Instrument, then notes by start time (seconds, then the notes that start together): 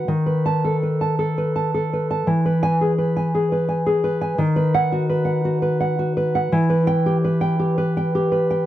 nylon-string guitar
0.08 D#3
0.26 B4
0.46 A5
0.64 A4
0.83 B4
1.01 A5
1.19 A4
1.38 B4
1.56 A5
1.74 A4
1.93 B4
2.11 A5
2.27 E3
2.46 B4
2.63 G#5
2.81 G#4
2.98 B4
3.16 G#5
3.35 G#4
3.52 B4
3.69 G#5
3.86 G#4
4.04 B4
4.21 G#5
4.38 D#3
4.56 B4
4.74 F#5
4.92 F#4
5.09 B4
5.25 F#5
5.45 F#4
5.62 B4
5.80 F#5
5.99 F#4
6.17 B4
6.35 F#5
6.52 E3
6.70 B4
6.87 G5
7.06 G4
7.24 B4
7.41 G5
7.59 G4
7.78 B4
7.97 G5
8.15 G4
8.32 B4
8.50 G5